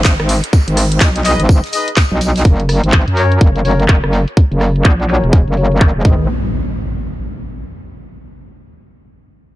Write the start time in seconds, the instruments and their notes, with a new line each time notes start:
Already playing: wobble bass G#1, downlifter
0.05 kick, snare, clap, tambourine
0.20 wobble bass G#1, cross-stick
0.29 open hi-hat, tambourine
0.44 closed hi-hat
0.53 kick, tambourine
0.68 wobble bass G#1, closed hi-hat
0.77 cross-stick, open hi-hat
0.92 closed hi-hat
1.00 wobble bass B1, kick, snare, clap, tambourine
1.16 closed hi-hat
1.24 horn section D#4 G#4 B4 D#5, snare, clap, open hi-hat, tambourine
1.40 wobble bass G#1, closed hi-hat
1.49 kick, tambourine
1.64 snare, closed hi-hat
1.73 horn section D#4 G#4 B4 D#5, open hi-hat, tambourine
1.88 closed hi-hat
1.97 kick, snare, clap, tambourine
2.12 wobble bass B1
2.21 open hi-hat, tambourine
2.36 snare, closed hi-hat
2.45 wobble bass F#1, kick
2.60 closed hi-hat
2.69 cross-stick, open hi-hat
2.83 wobble bass G#1, closed hi-hat
2.92 kick, clap
3.07 wobble bass F#2, closed hi-hat
3.17 horn section C#4 F#4 A#4 C#5, open hi-hat
3.32 closed hi-hat
3.41 wobble bass F#1, kick
3.56 closed hi-hat
3.65 wobble bass F#1, horn section C#4 F#4 A#4 C#5, open hi-hat
3.80 closed hi-hat
3.88 kick, clap
4.03 wobble bass F#1, cross-stick
4.13 open hi-hat
4.28 closed hi-hat
4.37 kick
4.51 wobble bass F#1, closed hi-hat
4.61 cross-stick, open hi-hat
4.76 closed hi-hat
4.85 wobble bass A#1, kick, clap
5.00 closed hi-hat
5.09 horn section C#4 F#4 A#4 C#5, clap, open hi-hat
5.23 wobble bass E1, closed hi-hat
5.33 kick
5.47 wobble bass F#1, closed hi-hat
5.57 horn section C#4 F#4 A#4 C#5, open hi-hat
5.72 closed hi-hat
5.80 kick, clap
5.95 wobble bass E1
6.05 wobble bass G#1, horn section D#4 G#4 B4 D#5, kick, impact